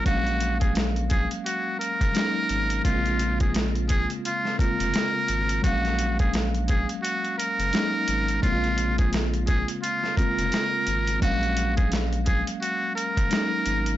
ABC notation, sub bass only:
X:1
M:4/4
L:1/16
Q:"Swing 16ths" 1/4=86
K:Bbm
V:1 name="Sub bass" clef=bass
B,,,6- B,,, z4 G,,, z2 A,,,2 | B,,,6- B,,, z4 F,,, z2 A,,,2 | B,,,6- B,,, z4 G,,, z2 A,,,2 | B,,,6- B,,, z4 F,,, z2 A,,,2 |
B,,,6- B,,, z4 G,,, z2 A,,,2 |]